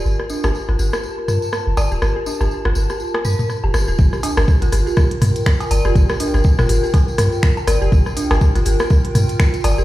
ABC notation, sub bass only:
X:1
M:4/4
L:1/16
Q:"Swing 16ths" 1/4=122
K:Gm
V:1 name="Sub bass" clef=bass
G,,, z2 G,,, z G,,, G,,, z3 G,, z2 F,,, G,,, D,,, | G,,, z2 G,,, z G,,, G,,, z3 G,, z2 F,,, G,,, D,,, | G,,, z2 G,,, z G,,, G,,, z3 G,, z3 G,,, F,,, | G,,, z2 G,,, z G,,, G,,, z3 G,, z3 G,,, F,,, |
G,,, z2 G,,, z G,,, G,,, z3 G,, z3 G,,, F,,, |]